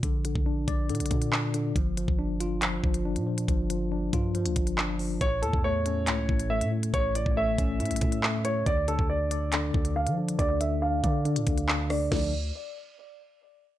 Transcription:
<<
  \new Staff \with { instrumentName = "Grand piano" } { \time 4/4 \key d \minor \tempo 4 = 139 r1 | r1 | r1 | cis''8 a'8 cis''2 e''8 r8 |
cis''8 d''8 e''2~ e''8 cis''8 | d''8 a'8 d''2 f''8 r8 | d''8 e''8 f''2~ f''8 d''8 | d''8 r2. r8 | }
  \new Staff \with { instrumentName = "Tine electric piano" } { \clef bass \time 4/4 \key d \minor d8 d8 d'8 d''8 d8 d8 d'8 d8 | f8 f8 d'8 f'8 f8 f8 d'8 f8 | f8 f8 d'8 f'8 f8 f8 d'8 f8 | a,8 a,8 a8 cis'8 a,8 a,8 a8 a,8 |
a,8 a,8 a8 cis'8 a,8 a,8 a8 a,8 | d8 d8 d'8 d''8 d8 d8 d'8 d8 | d8 d8 d'8 d''8 d8 d8 d'8 d8 | <d f a d'>8 r2. r8 | }
  \new Staff \with { instrumentName = "808-style bass" } { \clef bass \time 4/4 \key d \minor bes,,8. bes,,8. bes,,8 bes,16 bes,,16 bes,4. | g,,8. g,,4.~ g,,16 g,,8. bes,8. | g,,4. g,8. d,16 g,,4. | a,,8 e,16 e,4~ e,16 cis,8 a,,8. a,8. |
a,,8. a,,8. a,,8 a,16 a,,16 a,4. | d,8. d,4.~ d,16 d,8. f8. | d,4. d8. a,16 d,4. | d,4 r2. | }
  \new DrumStaff \with { instrumentName = "Drums" } \drummode { \time 4/4 <hh bd>8 hh16 bd16 r8 <hh bd>8 hh32 hh32 hh32 hh32 <hh bd>16 hh16 hc8 hh8 | <hh bd>8 hh16 bd16 r8 hh8 <hc hh>8 bd16 hh16 r16 hh8 hh16 | <hh bd>8 hh8 r8 <hh bd>8 hh16 hh16 <hh bd>16 hh16 hc8 hho8 | <hh bd>8 hh16 bd16 r8 hh8 <hc hh>8 bd16 hh16 r16 hh8 hh16 |
<hh bd>8 hh16 bd16 r8 <hh bd>8 hh32 hh32 hh32 hh32 <hh bd>16 hh16 hc8 hh8 | <hh bd>8 hh16 bd16 r8 hh8 <hc hh>8 bd16 hh16 r16 hh8 hh16 | <hh bd>8 hh8 r8 <hh bd>8 hh16 hh16 <hh bd>16 hh16 hc8 <hho ss>8 | <cymc bd sn>4 r4 r4 r4 | }
>>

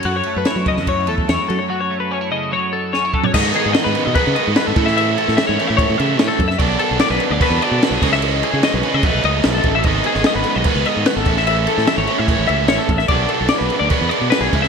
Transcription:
<<
  \new Staff \with { instrumentName = "Clean electric guitar" } { \time 4/4 \key b \mixolydian \tempo 4 = 147 fis'16 cis''8 b'16 cis''8 dis''8 cis''8 a'8 cis''8 a'16 cis''16 | fis'16 cis''8 b'16 cis''8 dis''8 cis''8 a'8 cis''8 a'16 cis''16 | dis''8 gis'8 dis''16 b'8 dis''16 b'8 dis''8 b'16 a'8 e''16 | e''8 a'8 e''16 cis''8 e''16 cis''8 e''8 cis''16 a'8 e''16 |
d''8 a'8 d''16 b'8 d''16 b'8 d''8 b'16 gis'8 e''16 | dis''8 gis'8 dis''16 b'8 dis''16 b'8 dis''8 b'16 a'8 e''16 | dis''8 gis'8 dis''16 b'8 dis''16 b'8 dis''8 b'16 a'8 e''16 | e''8 a'8 e''16 cis''8 e''16 cis''8 e''8 cis''16 a'8 e''16 |
d''8 a'8 d''16 b'8 d''16 b'8 d''8 b'16 gis'8 e''16 | }
  \new Staff \with { instrumentName = "Overdriven electric guitar" } { \clef bass \time 4/4 \key b \mixolydian r1 | r1 | <gis, dis gis b dis'>2 <gis, dis gis b dis'>4. <a, e a cis' e'>8~ | <a, e a cis' e'>4. <a, e a cis' e'>2 r8 |
<b, fis b d'>2 <b, fis b d'>4. <cis e gis cis'>8~ | <cis e gis cis'>4. <cis e gis cis'>8 <b, fis a dis'>2 | <gis, dis gis b dis'>2 <gis, dis gis b dis'>4. <a, e a cis' e'>8~ | <a, e a cis' e'>4. <a, e a cis' e'>2 r8 |
<b, fis b d'>2 <b, fis b d'>4. <cis gis cis' e'>8 | }
  \new Staff \with { instrumentName = "Clean electric guitar" } { \clef bass \time 4/4 \key b \mixolydian << { r8 a8 e'4. a8 e'8 r8 | r8 a8 cis'16 e'4.~ e'16 cis'16 e'16 r8 | r1 | r1 |
r1 | r1 | r1 | r1 |
r1 | } \\ { <fis, fis>4. cis8 fis4. fis,8 | fis4. cis8 fis4. fis,8 | r1 | r1 |
r1 | r1 | r1 | r1 |
r1 | } >> }
  \new Staff \with { instrumentName = "Fingered electric bass" } { \clef bass \time 4/4 \key b \mixolydian fis,8 r16 fis,16 r16 fis8 fis,8. e,8 e,16 r16 fis16 r16 | r1 | gis,8 r16 gis,16 r16 gis,16 r16 b,16 r16 cis16 r16 gis,16 r16 gis,16 a,8~ | a,8. a,16 r16 gis,16 r16 a,8 a,16 cis8 a,16 r16 fis,8 |
b,,8 r16 b,,16 r16 b,,16 r16 d,16 r16 e,16 r16 b,16 r16 b,,16 cis,8~ | cis,8. cis16 r16 b,,16 r16 cis16 b,,16 b,,16 cis,8 b,,8 a,,8 | gis,,8 r16 gis,,16 r16 gis,,16 r16 b,,16 r16 cis,16 r16 gis,16 r16 gis,,16 a,,8~ | a,,8. a,16 r16 gis,,16 r16 a,8 a,,16 cis,8 a,,16 r16 a,,8 |
b,,8 r16 b,,16 r16 b,,16 r16 d,16 r16 e,16 r16 b,16 r16 b,,16 cis,8 | }
  \new DrumStaff \with { instrumentName = "Drums" } \drummode { \time 4/4 cymr8 cymr8 <cymr sn>8 <bd cymr>16 sn16 <bd cymr>8 cymr16 bd16 <cymr sn>8 cymr8 | r4 r4 r4 sn8 bd16 tomfh16 | <cymc bd>8 cymc8 <cymc sn>8 cymc8 <cymc bd>8 cymc8 <cymc sn>8 <cymc bd>16 sn16 | cymc8 cymc16 sn16 <cymc sn>8 cymc8 <cymc bd>8 cymc8 <cymc sn>8 <cymc bd>16 sn16 |
<cymc bd>8 cymc8 <cymc sn>8 cymc8 <cymc bd>8 cymc8 <cymc sn>8 <cymc bd>16 sn16 | cymc8 cymc8 <cymc sn>8 cymc8 <cymc bd>8 cymc8 <cymc sn>8 <cymc bd>8 | <cymc bd>8 cymc16 sn16 <cymc sn>8 cymc8 <cymc bd>8 cymc8 <cymc sn>8 <cymc bd>16 sn16 | cymc8 cymc16 sn16 <cymc sn>8 cymc8 <cymc bd>8 cymc8 <cymc sn>8 <cymc bd>16 sn16 |
<cymc bd>8 cymc8 <cymc sn>8 cymc8 <cymc bd>8 cymc8 <cymc sn>8 <cymc bd>16 sn16 | }
>>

